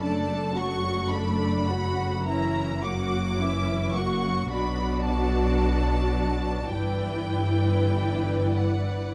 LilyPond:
<<
  \new Staff \with { instrumentName = "Violin section" } { \time 4/4 \key d \major \tempo 4 = 53 a''8 cis'''8 b''4 ais''8 d'''4 cis'''8 | b''8 a''4. g''4. fis''8 | }
  \new Staff \with { instrumentName = "Violin section" } { \time 4/4 \key d \major <a' d''>8 <fis' fis''>8 <a' d''>8 <fis' fis''>8 <e' e''>8 <fis' fis''>8 <e' e''>8 <fis' fis''>8 | <fis' d''>2 <b' d''>2 | }
  \new Staff \with { instrumentName = "Viola section" } { \time 4/4 \key d \major <a d'>8 <fis a>8 <a d'>8 <fis a>8 <e cis'>8 <fis ais>8 <e cis'>8 <fis ais>8 | <fis d'>2 <e e'>2 | }
  \new Staff \with { instrumentName = "Cello section" } { \clef bass \time 4/4 \key d \major fis,1 | b,2 g,2 | }
  \new Staff \with { instrumentName = "Double bass section" } { \clef bass \time 4/4 \key d \major fis,,1 | b,,2 g,,2 | }
>>